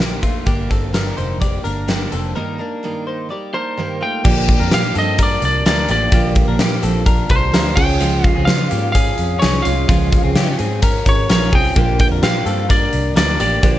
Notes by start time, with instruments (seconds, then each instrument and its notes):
Already playing: fingered electric bass A#1
0.00 steel-string acoustic guitar A#2 D3 F3 A#3 D4 A#4, clean electric guitar A#3 G4, snare, closed hi-hat
0.22 fingered electric bass F1, steel-string acoustic guitar F3 A#3 D4 A#4, clean electric guitar A3 F4, kick, closed hi-hat
0.46 fingered electric bass G1, steel-string acoustic guitar G2 D3 G3 A#3 D4 A#4, clean electric guitar A#3 G4, kick, closed hi-hat
0.69 fingered electric bass G1, steel-string acoustic guitar G3 A#3 D4 A#4, clean electric guitar C4 A4, kick, closed hi-hat
0.93 steel-string acoustic guitar G2 D3 G3 A#3 D4 A#4, clean electric guitar D4 A#4, snare, closed hi-hat
1.17 fingered electric bass F1, clean electric guitar D#4 C5, closed hi-hat
1.40 steel-string acoustic guitar G3 A#3 D4 A#4, clean electric guitar G4 D5, kick, closed hi-hat
1.63 fingered electric bass G1, steel-string acoustic guitar G3 A#3 D4 A#4, clean electric guitar D4 A#4, closed hi-hat
1.87 steel-string acoustic guitar G2 D3 G3 A#3 D4 A#4, clean electric guitar A#3 G4, snare, closed hi-hat
2.11 fingered electric bass F1, steel-string acoustic guitar G3 A#3 D4 A#4, clean electric guitar C4 A4, closed hi-hat
2.35 steel-string acoustic guitar G2 D#3 G3 A#3 D#4 A#4, clean electric guitar D#4 A#4
2.58 steel-string acoustic guitar G3 A#3 D#4 A#4, clean electric guitar D4 A#4
2.83 steel-string acoustic guitar G2 D#3 G3 A#3 D#4 A#4
3.07 clean electric guitar D#4 C5
3.29 steel-string acoustic guitar G3 A#3 D#4 A#4, clean electric guitar G4 D5
3.53 steel-string acoustic guitar G3 A#3 D#4 A#4, clean electric guitar D4 A#4, lead electric guitar C5
3.77 steel-string acoustic guitar G2 D#3 G3 A#3 D#4 A#4, clean electric guitar A#3 G4
4.01 steel-string acoustic guitar G3 A#3 D#4 A#4, clean electric guitar A3 F4, lead electric guitar G5
4.24 fingered electric bass A#1, steel-string acoustic guitar A#2 D3 F3 A#3 D4 G4, clean electric guitar A#3 G4, synth keys F4 G4 A#4 D5, kick, crash
4.48 kick, closed hi-hat
4.60 fingered electric bass F2, clean electric guitar D4 A#4
4.70 fingered electric bass A#2, steel-string acoustic guitar F3 A#3 D4 G4, clean electric guitar A#3 G4, lead electric guitar F5, snare, closed hi-hat
4.94 fingered electric bass G2, steel-string acoustic guitar F3 A#3 D4 G4, clean electric guitar C4 A4, closed hi-hat
4.98 lead electric guitar D#5
5.18 clean electric guitar D4 A#4, kick, closed hi-hat
5.23 lead electric guitar D5
5.42 fingered electric bass C2, lead electric guitar D5, closed hi-hat
5.65 fingered electric bass D2, steel-string acoustic guitar F3 A#3 D4 G4, clean electric guitar D4 A#4, lead electric guitar D5, snare, closed hi-hat
5.87 fingered electric bass A1, steel-string acoustic guitar F3 A#3 D4 G4, clean electric guitar A#3 G4, lead electric guitar D5, closed hi-hat
6.12 fingered electric bass A#1, steel-string acoustic guitar A#2 D3 F3 A#3 D4 G4, clean electric guitar A#3 G4, synth keys F4 G4 A#4 F5, kick, closed hi-hat
6.35 kick, closed hi-hat
6.48 fingered electric bass A#1, clean electric guitar D4 A#4
6.57 fingered electric bass A#2, steel-string acoustic guitar F3 A#3 D4 G4, clean electric guitar A#3 G4, snare, closed hi-hat
6.81 fingered electric bass A#1, steel-string acoustic guitar F3 A#3 D4 G4, clean electric guitar C4 A4, closed hi-hat
7.06 clean electric guitar D4 A#4, kick, closed hi-hat
7.29 fingered electric bass C2, lead electric guitar C5, kick, closed hi-hat
7.52 fingered electric bass D2, steel-string acoustic guitar F3 A#3 D4 G4, clean electric guitar D4 A#4, synth keys F4 G4 A#4 F5, snare, closed hi-hat
7.76 fingered electric bass C#2, synth keys C#4 F4 G#4 C#5, clean electric guitar C#4 G#4, steel-string acoustic guitar C#4 F4 G#4, lead electric guitar G5, kick, crash
8.00 steel-string acoustic guitar C#3 F3 C#4 F4 G#4, clean electric guitar G#3 F4, closed hi-hat
8.24 lead electric guitar F5, kick, closed hi-hat
8.36 fingered electric bass C#2, clean electric guitar C4 G#4
8.45 fingered electric bass C#3, steel-string acoustic guitar F3 C#4, clean electric guitar G#3 F4, lead electric guitar F5, snare, closed hi-hat
8.50 steel-string acoustic guitar F4 G#4
8.70 fingered electric bass G#2, clean electric guitar A#3 G4, steel-string acoustic guitar C#4 F4 G#4, closed hi-hat
8.92 clean electric guitar C#4 G#4, lead electric guitar F5, kick, closed hi-hat
9.18 fingered electric bass F2, closed hi-hat
9.39 fingered electric bass C2, steel-string acoustic guitar F3 C#4, clean electric guitar C#4 G#4, lead electric guitar C#5, snare, closed hi-hat
9.44 steel-string acoustic guitar F4 G#4
9.62 fingered electric bass C2, clean electric guitar G#3 F4, synth keys C#4 F4 G#4 C#5, steel-string acoustic guitar G#4, lead electric guitar F5, closed hi-hat
9.67 steel-string acoustic guitar C#4 F4
9.88 fingered electric bass C#2, steel-string acoustic guitar C#3 F3 C#4 F4 G#4, clean electric guitar G#3 F4, kick, closed hi-hat
10.12 kick, closed hi-hat
10.24 fingered electric bass C#2, clean electric guitar C4 G#4
10.35 fingered electric bass C#3, steel-string acoustic guitar F3 C#4 F4 G#4, clean electric guitar C#4 G4, snare, closed hi-hat
10.59 fingered electric bass G#2, clean electric guitar C4 G#4, steel-string acoustic guitar C#4 F4 G#4, closed hi-hat
10.82 clean electric guitar C#4 A#4, kick, closed hi-hat
11.06 fingered electric bass G#1, synth keys C#4 F4 G#4 C#5, lead electric guitar C#5, kick, closed hi-hat
11.28 fingered electric bass A#1, steel-string acoustic guitar F3 C#4 F4 G#4, clean electric guitar C#4 A#4, lead electric guitar C#5, snare, closed hi-hat
11.52 fingered electric bass C2, clean electric guitar C4 G#4, steel-string acoustic guitar C#4 F4 G#4, lead electric guitar G5, kick, open hi-hat
11.76 fingered electric bass A#1, steel-string acoustic guitar A#2 D3 F3 A#3 D4 G4, clean electric guitar A#3 G4, synth keys D4 F4 G4 A#4, kick, closed hi-hat
11.99 lead electric guitar G5, kick, closed hi-hat
12.11 fingered electric bass F2, clean electric guitar D4 A#4
12.22 fingered electric bass A#2, steel-string acoustic guitar F3 A#3 D4 G4, clean electric guitar A#3 G4, lead electric guitar F5, snare, closed hi-hat
12.46 fingered electric bass G2, steel-string acoustic guitar F3 A#3 D4 G4, clean electric guitar C4 A4, closed hi-hat
12.69 clean electric guitar D4 A#4, lead electric guitar D5, kick, closed hi-hat
12.93 fingered electric bass C2, closed hi-hat
13.14 fingered electric bass D2, steel-string acoustic guitar F3 A#3 D4 G4, clean electric guitar D4 A#4, lead electric guitar D5, snare, closed hi-hat
13.38 fingered electric bass A1, steel-string acoustic guitar F3 A#3 D4 G4, clean electric guitar A#3 G4, lead electric guitar D5, closed hi-hat
13.62 fingered electric bass A#1, steel-string acoustic guitar A#2 D3 F3 A#3 D4 G4, clean electric guitar A#3 G4, synth keys D4 F4 G4 C5, kick, closed hi-hat